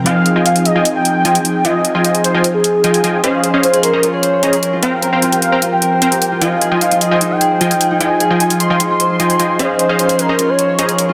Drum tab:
HH |x-x-xxx-x-x-xxx-|x-x-xxx-x-x-xxx-|x-x-xxx-x-x-xxx-|x-x-xxx-x-x-xxx-|

HH |x-x-xxx-x-x-xxx-|x-x-xxx-x-x-xxx-|x-x-xxx-x-x-xxx-|